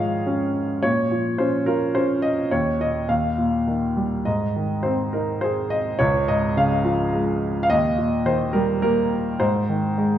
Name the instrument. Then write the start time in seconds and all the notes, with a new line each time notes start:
grand piano
Already playing: G#2 D#3 F3 C#5 D#5 F5
0.00 G#3
0.27 C#4
0.83 A#2 C#5
1.11 F3
1.38 C#4 C5
1.66 F4 A#4
1.95 C#4 C5
2.22 D#5
2.51 D#2 C#5
2.80 A#2 D#5
3.08 D#2 F5
3.38 A#2
3.68 D#3
3.97 G3
4.25 G#2 D#5
4.56 D#3
4.83 C4 C5
5.13 D#4 A#4
5.41 G#4 C5
5.70 D#5
5.99 C#2 C#5
6.28 G#2 D#5
6.57 C#3 F5
6.85 F3
7.13 G#3
7.63 F5
7.70 D#2 D#5
7.98 A#2
8.26 D#3 C5
8.53 G3 A#4
8.82 A#3 A#4
9.40 G#2 C5
9.69 D#3
9.98 G#3